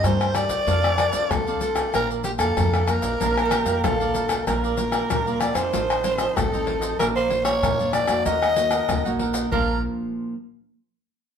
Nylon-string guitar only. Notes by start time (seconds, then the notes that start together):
Already playing: D#4 G4 D5
0.05 G3
0.35 D#4 G4 D5
0.68 F3 C4 D4 A4
1.13 C4 D4 A4
1.31 C3
1.48 C4 D4 A4
1.94 A#2 A#3 D4 F4
2.39 A#3 D4 F4
2.58 F3
2.88 A#3 D4 F4
3.21 A#2 A#3 D4 F4
3.66 A#3 D4 F4
3.84 F3
4.01 A#3 D4 F4
4.47 A#2 A#3 D4 F4
4.77 A#3 D4 F4
5.11 F3
5.27 A#3 D4 F4
5.55 F3 C4 D#4
5.74 A2
6.04 F3 C4 D#4
6.37 A2
6.53 F3 C4 D#4
7.00 A#2 F3 A#3 D4
7.30 F3 A#3 D4
7.63 F2
7.79 F3 A#3 D4
8.07 A#3 D#4 F#4
8.26 D#3
8.56 A#3 D#4 F#4
8.89 A#2
9.05 A#3 D#4 F#4
9.51 A#2 F3 A#3 D4